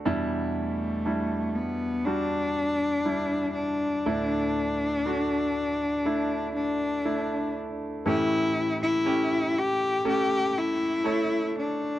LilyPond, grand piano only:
<<
  \new Staff \with { instrumentName = "Grand piano" } { \time 4/4 \key a \mixolydian \tempo 4 = 60 <g d' e'>4 <g d' e'>4 <g d' fis'>4 <g d' e'>4 | <a d' e'>4 <a d' fis'>4 <a d' e'>4 <a d' e'>4 | <a cis' g'>4 <a cis' g'>4 <a cis' a'>4 <a a' cis''>4 | }
  \new Staff \with { instrumentName = "Grand piano" } { \clef bass \time 4/4 \key a \mixolydian <e, b,>1 | <d, a,>1 | <a, e>1 | }
>>